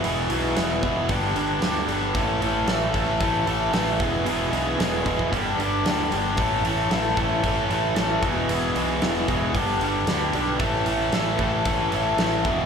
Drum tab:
HH |o-o-o-o-o-o-o-o-|o-o-o-o-o-o-o-o-|o-o-o-o-o-o-o-o-|o-o-o-o-o-o-o-o-|
SD |----o-------o---|----o-------o---|----o-------o---|----o-------o---|
BD |------o-o-------|o-----o-o-----o-|------ooo-------|o-----o-o-----o-|

HH |o-o-o-o-o-o-o-o-|o-o-o-o-o-o-o-o-|
SD |----o-------o---|----o-------o---|
BD |------o-o-------|o-----o-o-----o-|